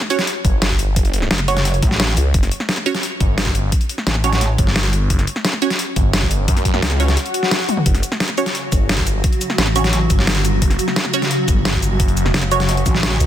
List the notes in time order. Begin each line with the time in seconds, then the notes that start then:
0.01 snare
0.10 C#4 F#4 C#5, closed hi-hat
0.19 snare, closed hi-hat
0.27 closed hi-hat
0.45 G1, kick, closed hi-hat
0.62 snare, closed hi-hat
0.70 kick
0.79 closed hi-hat
0.96 F#1, kick, closed hi-hat
1.05 closed hi-hat
1.13 closed hi-hat
1.22 snare
1.31 F#1, snare, closed hi-hat
1.39 snare
1.48 C#4 F#4 C#5, open hi-hat
1.57 snare, closed hi-hat
1.65 closed hi-hat
1.74 closed hi-hat
1.82 A1, kick, closed hi-hat
1.91 snare
2.00 snare, closed hi-hat
2.17 C#2, closed hi-hat
2.34 F#1, kick, closed hi-hat
2.43 snare, closed hi-hat
2.51 closed hi-hat
2.60 snare
2.69 snare, closed hi-hat
2.77 snare
2.86 C#4 F#4 C#5, closed hi-hat
2.95 snare, closed hi-hat
3.03 closed hi-hat
3.20 G1, kick, closed hi-hat
3.38 snare, closed hi-hat
3.46 kick
3.55 closed hi-hat
3.72 kick, closed hi-hat
3.81 closed hi-hat
3.89 closed hi-hat
3.98 snare
4.07 A1, snare, closed hi-hat
4.15 snare
4.24 C#4 F#4 C#5, open hi-hat
4.33 snare, closed hi-hat
4.41 closed hi-hat
4.58 G1, kick, closed hi-hat
4.67 snare
4.76 snare, closed hi-hat
4.93 closed hi-hat
5.10 F#1, kick, closed hi-hat
5.19 snare, closed hi-hat
5.27 closed hi-hat
5.36 snare
5.45 snare, closed hi-hat
5.53 snare
5.62 C#4 F#4 C#5, closed hi-hat
5.70 snare, closed hi-hat
5.79 closed hi-hat
5.96 G1, kick, closed hi-hat
6.13 snare, closed hi-hat
6.22 kick
6.31 closed hi-hat
6.48 F#2, kick, closed hi-hat
6.57 snare, closed hi-hat
6.65 kick, closed hi-hat
6.74 snare
6.82 C#2, snare, closed hi-hat
6.91 snare, closed hi-hat
7.00 C#4 F#4 C#5, open hi-hat
7.08 snare, closed hi-hat
7.17 closed hi-hat, swell
7.26 closed hi-hat
7.34 closed hi-hat
7.43 snare
7.51 snare, closed hi-hat
7.69 closed hi-hat, high tom
7.77 mid tom
7.86 F#1 C#3 F#3 F#4, kick, closed hi-hat
7.95 snare, closed hi-hat
8.03 closed hi-hat, shaker
8.12 snare
8.20 snare, closed hi-hat
8.29 snare
8.38 C#4 F#4 C#5, closed hi-hat, shaker
8.46 snare, closed hi-hat
8.55 closed hi-hat
8.72 G1, kick, closed hi-hat, shaker
8.89 snare, closed hi-hat
8.98 kick
9.07 closed hi-hat, shaker
9.24 kick, closed hi-hat
9.33 closed hi-hat
9.41 closed hi-hat, shaker
9.50 snare
9.58 A1, snare, closed hi-hat
9.67 snare
9.76 C#4 F#4 C#5, open hi-hat, shaker
9.84 snare, closed hi-hat
9.93 closed hi-hat
10.10 G1, kick, closed hi-hat, shaker
10.19 snare
10.27 snare, closed hi-hat
10.45 closed hi-hat, shaker
10.62 F#1, kick, closed hi-hat
10.70 snare, closed hi-hat
10.79 closed hi-hat, shaker
10.88 snare
10.96 snare, closed hi-hat
11.05 snare
11.14 C#4 F#4 C#5, closed hi-hat, shaker
11.22 snare, closed hi-hat
11.31 closed hi-hat
11.48 G1, kick, closed hi-hat, shaker
11.65 snare, closed hi-hat
11.74 kick
11.82 closed hi-hat, shaker
12.00 F#1, kick, closed hi-hat
12.08 closed hi-hat
12.17 closed hi-hat, shaker
12.26 snare
12.34 F#1, snare, closed hi-hat
12.43 snare
12.51 C#4 F#4 C#5, open hi-hat, shaker
12.60 snare, closed hi-hat
12.69 closed hi-hat
12.77 closed hi-hat
12.86 A1, kick, closed hi-hat, shaker
12.95 snare
13.03 snare, closed hi-hat
13.20 C#2, closed hi-hat, shaker